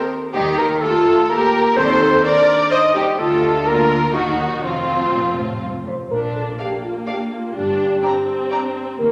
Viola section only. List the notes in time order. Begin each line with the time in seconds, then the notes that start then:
0.34 D#4
0.59 G4
0.83 F4
1.30 G4
1.77 A4
2.24 A#4
2.71 C5
2.95 D#4
3.19 F4
3.66 F4
4.15 D#4
4.64 C4
6.12 D4
6.60 A#3
7.55 D4
8.04 C4
9.00 A#3